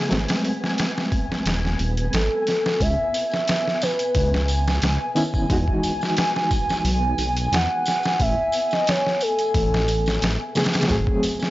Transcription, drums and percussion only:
0.11 snare, open hi-hat
0.28 snare, open hi-hat
0.45 open hi-hat
0.64 snare
0.78 snare, open hi-hat
0.98 snare
1.12 kick, open hi-hat
1.32 snare
1.46 snare, open hi-hat
1.65 snare
1.79 open hi-hat
1.97 closed hi-hat
2.13 snare, open hi-hat
2.47 snare, open hi-hat
2.66 snare
2.80 kick, open hi-hat, tambourine
3.14 open hi-hat, tambourine
3.31 snare, tambourine
3.47 snare, open hi-hat, tambourine
3.68 snare
3.82 snare, open hi-hat, tambourine
3.99 closed hi-hat, tambourine
4.15 kick, open hi-hat, tambourine
4.34 snare
4.48 open hi-hat, tambourine
4.67 snare, tambourine
4.82 snare, open hi-hat, tambourine
5.16 open hi-hat, tambourine
5.34 kick, tambourine
5.50 kick, open hi-hat, tambourine
5.68 kick
5.83 open hi-hat, tambourine
6.01 snare, tambourine
6.17 snare, open hi-hat, tambourine
6.36 snare
6.51 kick, open hi-hat, tambourine
6.69 snare, tambourine
6.85 open hi-hat, tambourine
7.18 open hi-hat, tambourine
7.37 closed hi-hat, tambourine
7.52 snare, open hi-hat, tambourine
7.86 snare, open hi-hat, tambourine
8.03 snare, tambourine
8.19 kick, open hi-hat, tambourine
8.52 open hi-hat, tambourine
8.71 snare, tambourine
8.86 snare, open hi-hat, tambourine
9.07 snare
9.21 open hi-hat, tambourine
9.39 closed hi-hat, tambourine
9.54 kick, open hi-hat, tambourine
9.74 snare
9.88 open hi-hat, tambourine
10.06 snare, tambourine
10.21 snare, open hi-hat, tambourine
10.55 snare, open hi-hat, tambourine
10.65 snare, open hi-hat
10.73 snare, open hi-hat, tambourine
10.81 snare, open hi-hat
10.89 kick, open hi-hat, tambourine
11.07 kick
11.23 open hi-hat, tambourine
11.40 snare, tambourine

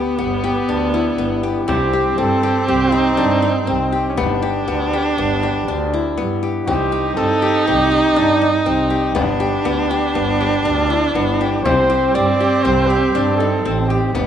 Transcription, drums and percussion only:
0.20 frame drum
0.44 frame drum
1.69 frame drum
1.94 frame drum
2.69 frame drum
2.94 frame drum
4.18 frame drum
5.18 frame drum
5.43 frame drum
6.43 frame drum
6.68 frame drum
6.93 frame drum
7.68 frame drum
7.92 frame drum
9.16 frame drum
9.42 frame drum
10.17 frame drum
10.42 frame drum
11.66 frame drum
11.90 frame drum
12.90 frame drum
14.15 frame drum

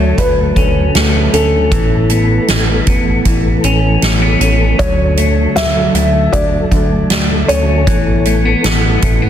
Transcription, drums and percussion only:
0.18 kick, closed hi-hat
0.56 kick, closed hi-hat
0.95 snare, closed hi-hat
1.34 closed hi-hat
1.72 kick, closed hi-hat
2.10 closed hi-hat
2.48 snare, closed hi-hat
2.87 kick, closed hi-hat
3.25 kick, closed hi-hat
3.64 closed hi-hat
4.02 snare, closed hi-hat
4.41 closed hi-hat
4.79 kick, closed hi-hat
5.17 closed hi-hat
5.56 snare, closed hi-hat
5.95 closed hi-hat
6.33 kick, closed hi-hat
6.71 kick, closed hi-hat
7.10 snare, closed hi-hat
7.49 closed hi-hat
7.87 kick, closed hi-hat
8.25 closed hi-hat
8.64 snare, closed hi-hat
9.02 kick, closed hi-hat

